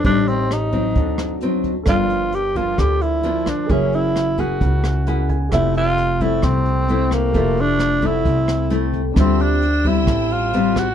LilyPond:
<<
  \new Staff \with { instrumentName = "String section" } { \time 4/4 \key f \major \tempo 4 = 132 r1 | r1 | r1 | r1 |
r1 | \key d \minor <c'' g'' e'''>1 | }
  \new Staff \with { instrumentName = "Grand piano" } { \time 4/4 \key f \major << { r1 | r1 | r2. ges''8 aes''8 | r1 |
r1 | \key d \minor r1 | } \\ { r1 | <a' bes' d'' f'''>1 | <aes' bes' des'' fes''>1 | <g' a' c'' e''>1 |
<g' a' c'' e''>1 | <d' g' c'' e''>1 | } >> }
  \new Staff \with { instrumentName = "Tenor saxophone" } { \time 4/4 \key f \major d'8 c'8 ees'2 r4 | f'4 g'8 f'8 g'8 e'4 d'8 | des'8 fes'4 ges'2 r8 | e'8 f'4 e'8 c'4. bes8~ |
bes8 d'4 e'2 r8 | \key d \minor c'8 d'4 e'4 f'4 fis'8 | }
  \new Staff \with { instrumentName = "Nylon-string guitar" } { \time 4/4 \key f \major << { <g c' ees'>4. <ges c'>4. <fis c' ees'>8 r8 | <f bes d'>4 r8 <f bes d'>4. <f bes d'>4 | <bes fes' aes'>4 r8 <bes fes' aes'>4. <bes fes' aes'>8 r8 | <a c'>4. <a c' e'>4. <a c' e'>4 |
<a c' e'>4. <a c' e'>4. <a c' e'>8 r8 | \key d \minor <g c' f'>4 r8 <g c'>4. <g c' f'>8 r8 | } \\ { a,2 d2 | g,2 d2 | ges2 des2 | f2 c2 |
f2 c2 | d2 a,2 | } >> }
  \new Staff \with { instrumentName = "Upright bass" } { \clef bass \time 4/4 \key f \major a,,2 d,2 | g,,2 d,2 | ges,,2 des,2 | f,,2 c,2 |
f,,2 c,2 | \key d \minor d,2 a,,2 | }
  \new DrumStaff \with { instrumentName = "Drums" } \drummode { \time 4/4 <hh bd>8 hh8 <hh ss>8 <hh bd>8 <hh bd>8 <hh ss>8 hh8 <hh bd>8 | <hh bd ss>8 hh8 hh8 <hh bd>8 <hh bd ss>8 hh8 hh8 <bd ss>8 | <hh bd>8 hh8 <hh ss>8 <hh bd>8 <hh bd>8 <hh ss>8 hh8 <hh bd>8 | <hh bd ss>8 hh8 hh8 <hh bd>8 <hh bd ss>8 hh8 hh8 <bd ss>8 |
<hh bd>8 hh8 <hh ss>8 <hh bd>8 <hh bd>8 <hh ss>8 hh8 <hh bd>8 | <hh bd ss>8 hh8 hh8 <hh bd>8 <hh bd ss>8 hh8 hh8 <hh bd ss>8 | }
>>